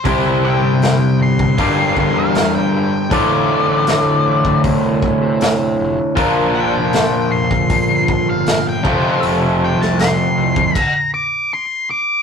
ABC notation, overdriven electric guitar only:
X:1
M:4/4
L:1/8
Q:1/4=78
K:Dm
V:1 name="Overdriven electric guitar"
[C,G,CEGc]4 [G,,D,G,B,DG]4 | [D,,A,,D,A,F]8 | [B,,F,B,DFB]6- [B,,F,B,DFB] [F,,C,F,A,CF]- | [F,,C,F,A,CF]4 z4 |]